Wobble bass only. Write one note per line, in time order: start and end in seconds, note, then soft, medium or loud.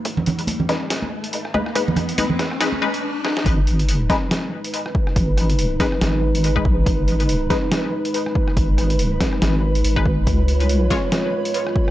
3.46 4.08 G#1 loud
5.16 5.78 G#1 loud
6.01 6.64 G#1 loud
6.65 6.85 A#1 loud
6.86 7.49 G#1 loud
8.57 9.19 G#1 loud
9.42 9.83 G#1 loud
9.85 10.25 G#1 loud
10.27 10.71 C#2 loud
10.71 10.89 C2 loud